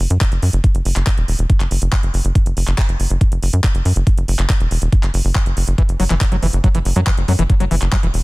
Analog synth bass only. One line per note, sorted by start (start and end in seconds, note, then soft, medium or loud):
0.10 0.18 F#2 medium
0.32 0.39 F#1 medium
0.42 0.50 F#2 loud
0.53 0.61 F#1 medium
0.75 0.82 F#1 medium
0.85 0.93 F#1 loud
0.96 1.04 F#1 medium
1.17 1.25 E1 medium
1.28 1.36 E1 medium
1.39 1.46 E1 medium
1.60 1.68 F#1 medium
1.71 1.79 F#1 loud
1.82 1.89 F#1 medium
2.03 2.11 F#1 medium
2.14 2.21 F#1 loud
2.25 2.32 F#1 medium
2.46 2.54 F#1 medium
2.57 2.64 F#1 loud
2.67 2.75 F#1 medium
2.89 2.96 F#1 medium
3.00 3.07 F#1 medium
3.10 3.18 F#1 loud
3.32 3.39 F#1 medium
3.42 3.50 F#1 loud
3.53 3.61 F#2 medium
3.75 3.82 F#1 medium
3.85 3.93 F#2 loud
3.96 4.04 F#1 medium
4.17 4.25 F#1 medium
4.28 4.36 F#1 loud
4.39 4.46 F#1 medium
4.60 4.68 E1 medium
4.71 4.79 E1 loud
4.82 4.89 E1 medium
5.03 5.11 F#1 medium
5.14 5.21 F#1 loud
5.25 5.32 F#1 medium
5.46 5.54 F#1 medium
5.57 5.64 F#1 loud
5.67 5.75 F#1 medium
5.89 5.96 F#1 medium
6.00 6.07 F#1 loud
6.10 6.18 F#1 medium
6.32 6.39 F#1 medium
6.42 6.50 F#1 loud
6.53 6.61 F#1 loud
6.75 6.82 F#1 medium
6.85 6.93 F#1 loud
6.96 7.04 F#2 medium
7.17 7.25 F#1 medium
7.28 7.36 F#2 loud
7.39 7.46 F#1 medium
7.60 7.68 F#1 medium
7.71 7.79 F#1 loud
7.82 7.89 F#1 medium
8.03 8.11 E1 medium
8.14 8.21 E1 medium